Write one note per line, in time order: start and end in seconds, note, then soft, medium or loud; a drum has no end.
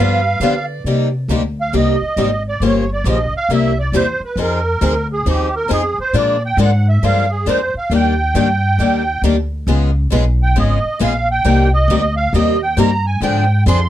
0.00 0.39 G2 medium
0.00 0.19 D3 medium
0.00 0.20 F3 medium
0.00 0.20 B3 medium
0.00 0.20 D4 medium
0.00 0.20 G4 medium
0.00 0.42 B4 medium
0.00 0.66 F5 medium
0.40 0.83 D3 medium
0.40 0.53 D3 medium
0.40 0.53 F3 medium
0.40 0.54 B3 medium
0.40 0.54 D4 medium
0.40 0.54 G4 medium
0.40 0.83 D5 medium
0.84 1.28 C3 medium
0.84 1.07 C3 medium
0.84 1.08 G3 medium
0.84 1.08 A#3 medium
0.84 1.08 D#4 medium
0.84 1.08 G4 medium
1.28 1.72 D2 medium
1.28 1.41 C3 medium
1.28 1.42 G3 medium
1.28 1.42 A#3 medium
1.28 1.42 D#4 medium
1.28 1.42 G4 medium
1.61 1.75 F5 medium
1.73 1.99 C2 medium
1.73 1.95 C3 medium
1.73 1.95 G3 medium
1.73 1.95 A#3 medium
1.73 1.95 D#4 medium
1.73 1.95 G4 medium
1.73 2.43 D#5 medium
2.01 muted upright bass stroke soft
2.16 2.60 G#1 medium
2.16 2.29 C3 medium
2.16 2.29 G3 medium
2.16 2.29 A#3 medium
2.16 2.29 D#4 medium
2.16 2.29 G4 medium
2.49 2.63 D5 medium
2.60 3.04 G1 medium
2.60 2.83 C#3 medium
2.60 2.83 F3 medium
2.60 2.83 A#3 medium
2.60 2.83 F4 medium
2.60 2.84 G4 medium
2.65 2.90 C#5 medium
2.93 3.07 D5 medium
3.04 3.31 A#1 medium
3.04 3.17 C#3 medium
3.04 3.17 F3 medium
3.04 3.17 A#3 medium
3.04 3.17 F4 medium
3.04 3.17 G4 medium
3.09 3.34 D#5 medium
3.32 muted upright bass stroke soft
3.37 3.51 F5 medium
3.49 3.92 C2 medium
3.49 3.71 C3 medium
3.49 3.71 G3 medium
3.49 3.72 A#3 medium
3.49 3.72 E4 medium
3.49 3.72 G4 medium
3.53 3.78 E5 medium
3.79 3.94 D5 medium
3.92 4.19 E2 medium
3.92 4.05 C3 medium
3.92 4.05 G3 medium
3.92 4.05 A#3 medium
3.92 4.05 E4 medium
3.92 4.05 G4 medium
3.92 4.22 C5 medium
4.20 muted upright bass stroke soft
4.25 4.39 B4 medium
4.36 4.79 F2 medium
4.36 4.59 F3 medium
4.36 4.59 C4 medium
4.36 4.60 D#4 medium
4.36 4.60 G#4 medium
4.42 5.08 A#4 medium
4.81 5.24 D2 medium
4.81 4.93 F3 medium
4.81 4.93 C4 medium
4.81 4.93 D#4 medium
4.81 4.93 G#4 medium
5.13 5.27 G#4 medium
5.26 5.69 D#2 medium
5.26 5.47 F3 medium
5.26 5.47 C4 medium
5.26 5.48 D#4 medium
5.26 5.55 G4 medium
5.26 5.48 G#4 medium
5.56 5.71 A#4 medium
5.68 5.96 F2 medium
5.68 5.80 F3 medium
5.68 5.81 C4 medium
5.68 5.81 D#4 medium
5.68 5.82 G#4 medium
5.73 5.99 G#4 medium
5.98 6.15 C5 medium
5.98 muted upright bass stroke soft
6.13 6.57 A#2 medium
6.13 6.36 D3 medium
6.13 6.35 F3 medium
6.13 6.36 G#3 medium
6.13 6.36 A#3 medium
6.13 6.36 D4 medium
6.13 6.36 F4 medium
6.13 6.37 G#4 medium
6.13 6.36 A#4 medium
6.13 6.43 D5 medium
6.45 6.60 G5 medium
6.57 7.01 G#2 loud
6.57 6.70 D3 medium
6.57 6.70 F3 medium
6.57 6.70 G#3 medium
6.57 6.70 A#3 medium
6.57 6.70 D4 medium
6.57 6.70 F4 medium
6.57 6.70 G#4 medium
6.57 6.70 A#4 medium
6.62 6.87 F#5 medium
6.89 7.04 E5 medium
7.03 7.46 G2 medium
7.03 7.24 D3 medium
7.03 7.24 F3 medium
7.03 7.25 G#3 medium
7.03 7.24 A#3 medium
7.03 7.25 D4 medium
7.03 7.25 F4 medium
7.03 7.25 G#4 medium
7.03 7.25 A#4 medium
7.03 7.31 F5 medium
7.31 7.47 G#4 medium
7.46 7.72 F2 medium
7.46 7.59 D3 medium
7.46 7.58 F3 medium
7.46 7.58 G#3 medium
7.46 7.59 A#3 medium
7.46 7.58 D4 medium
7.46 7.58 F4 medium
7.46 7.60 G#4 medium
7.46 7.58 A#4 medium
7.46 7.75 C5 medium
7.74 7.92 F5 medium
7.74 muted upright bass stroke soft
7.90 8.33 D#2 medium
7.90 8.12 D#3 medium
7.90 8.13 G3 medium
7.90 8.13 A#3 medium
7.90 8.13 D4 medium
7.90 8.13 G4 medium
7.95 9.22 G5 medium
8.34 8.78 G2 medium
8.34 8.47 D#3 medium
8.34 8.47 G3 medium
8.34 8.47 A#3 medium
8.34 8.47 D4 medium
8.34 8.47 G4 medium
8.78 9.21 D#2 medium
8.78 9.01 D#3 medium
8.78 9.02 G3 medium
8.78 9.02 A#3 medium
8.78 9.02 D4 medium
8.78 9.02 G4 medium
9.22 9.66 D2 medium
9.22 9.35 D#3 medium
9.22 9.35 G3 medium
9.22 9.35 A#3 medium
9.22 9.35 D4 medium
9.22 9.35 G4 medium
9.67 10.10 C#2 medium
9.67 9.89 C#3 medium
9.67 9.90 G#3 medium
9.67 9.90 B3 medium
9.67 9.90 F4 medium
9.67 9.90 G#4 medium
10.10 10.55 B1 medium
10.10 10.23 C#3 medium
10.10 10.23 G#3 medium
10.10 10.23 B3 medium
10.10 10.24 F4 medium
10.10 10.24 G#4 medium
10.43 10.58 G5 medium
10.56 10.82 G#1 medium
10.56 10.78 C#3 medium
10.56 10.78 G#3 medium
10.56 10.78 B3 medium
10.56 10.78 F4 medium
10.56 10.78 G#4 medium
10.56 10.99 D#5 medium
10.84 muted upright bass stroke soft
10.99 11.44 A#1 medium
10.99 11.12 C#3 medium
10.99 11.12 G#3 medium
10.99 11.12 B3 medium
10.99 11.12 F4 medium
10.99 11.13 G#4 medium
10.99 11.29 F5 medium
11.31 11.71 G5 loud
11.45 11.87 C2 medium
11.45 11.66 C3 medium
11.45 11.67 G3 medium
11.45 11.67 A#3 medium
11.45 11.67 D#4 medium
11.45 11.67 G4 medium
11.74 12.15 D#5 medium
11.88 12.32 D2 medium
11.88 12.01 C3 medium
11.88 12.01 G3 medium
11.88 12.01 A#3 medium
11.88 12.01 D#4 medium
11.88 12.02 G4 medium
12.16 12.33 F5 medium
12.33 12.76 D#2 medium
12.33 12.56 C3 medium
12.33 12.56 G3 medium
12.33 12.56 A#3 medium
12.33 12.56 D#4 medium
12.33 12.56 G4 medium
12.33 12.61 D#5 medium
12.62 12.78 G5 medium
12.77 13.20 G2 medium
12.77 12.89 C3 medium
12.77 12.89 G3 medium
12.77 12.89 A#3 medium
12.77 12.90 D#4 medium
12.77 12.90 G4 medium
12.77 13.06 A#5 loud
13.06 13.22 G#5 medium
13.21 13.64 G#2 medium
13.21 13.43 D3 medium
13.21 13.44 F3 medium
13.21 13.44 C4 medium
13.21 13.44 D4 medium
13.21 13.44 G#4 medium
13.21 13.64 G5 medium
13.66 13.89 F2 loud
13.66 13.78 D3 medium
13.66 13.78 F3 medium
13.66 13.78 C4 medium
13.66 13.78 D4 medium
13.66 13.79 G#4 loud
13.66 13.89 C6 medium